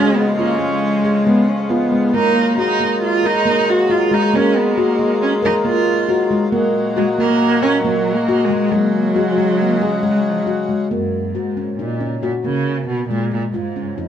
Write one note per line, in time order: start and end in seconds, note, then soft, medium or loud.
0.00 2.12 F2 medium
0.00 2.12 C#3 medium
0.00 0.19 G#3 medium
0.00 0.36 G#3 medium
0.00 2.10 G#3 medium
0.00 0.16 C#4 loud
0.00 2.12 F4 medium
0.15 0.36 B3 medium
0.37 0.60 A#3 medium
0.37 1.23 C#4 loud
0.37 0.51 F4 medium
0.59 1.91 G#3 medium
0.59 0.85 G#3 medium
1.05 1.17 G#4 medium
1.26 1.51 G#3 medium
1.26 1.49 B3 medium
1.48 1.71 C#4 medium
1.70 2.16 B3 medium
1.70 1.82 F4 medium
1.92 2.04 G#3 medium
2.14 6.49 D#3 medium
2.14 6.49 F#3 medium
2.14 2.38 A#3 medium
2.14 2.59 A#3 medium
2.14 2.55 D#4 loud
2.14 6.49 F4 medium
2.58 6.52 G#3 loud
2.58 2.99 D#4 medium
2.58 2.70 F#4 medium
2.80 3.04 A#3 medium
3.02 3.27 F4 loud
3.24 3.71 D#4 loud
3.24 3.36 A#4 medium
3.46 3.70 A#3 medium
3.70 3.92 F#4 medium
3.90 4.15 F4 medium
3.90 4.02 F#4 medium
4.11 4.24 G#3 medium
4.11 4.37 D#4 medium
4.33 4.58 A#3 medium
4.33 4.58 C#4 medium
4.57 4.80 B3 medium
4.78 5.22 A#3 medium
4.78 4.90 F#4 medium
4.99 5.23 A#3 medium
5.22 5.32 C#4 medium
5.42 5.55 D#4 medium
5.42 5.55 A#4 medium
5.65 5.89 A#3 medium
5.65 6.28 F4 medium
6.09 6.21 F#4 medium
6.31 6.43 G#3 medium
6.52 8.70 A#2 medium
6.52 8.73 F#3 medium
6.52 10.87 G#3 medium
6.52 6.77 A#3 medium
6.52 8.70 F#4 medium
6.97 7.07 G#3 medium
6.97 7.09 F#4 medium
7.19 7.43 A#3 medium
7.19 7.64 A#3 loud
7.62 7.84 C#4 loud
7.62 7.74 A#4 medium
7.85 8.17 F#3 medium
7.85 8.09 A#3 medium
8.15 8.46 A#3 medium
8.29 8.41 F#4 medium
8.45 8.74 G#3 loud
8.50 8.62 G#3 medium
8.71 10.89 C#3 medium
8.71 10.12 F#3 medium
8.71 8.96 G#3 medium
8.71 9.18 A#3 medium
8.71 10.88 F#4 medium
9.16 9.62 G#3 medium
9.16 9.28 F#4 medium
9.38 9.62 G#3 medium
9.60 9.83 A#3 medium
9.81 10.05 G#3 medium
9.81 9.93 G#4 medium
10.03 10.69 F#3 medium
10.03 10.27 G#3 medium
10.11 10.21 G#3 medium
10.20 10.31 F#3 medium
10.29 10.40 F3 medium
10.39 10.48 F#3 medium
10.47 10.59 F#4 medium
10.69 10.81 G#3 medium
10.91 11.36 F#2 medium
10.91 11.15 A#3 medium
11.35 11.78 G#2 medium
11.35 11.47 F#4 medium
11.57 11.69 C#4 medium
11.79 12.20 A#2 medium
11.79 11.91 D#4 medium
12.00 12.13 C#4 medium
12.22 12.32 A#2 medium
12.22 12.35 F#4 medium
12.45 12.85 C#3 medium
12.45 12.69 A#3 medium
12.88 13.09 B2 medium
13.10 13.30 A#2 medium
13.10 13.35 G#3 medium
13.33 13.43 A#2 medium
13.54 13.99 G#2 medium
13.54 13.66 F4 medium
13.76 13.88 C#4 medium
13.98 14.08 F2 medium
13.98 14.08 D#4 medium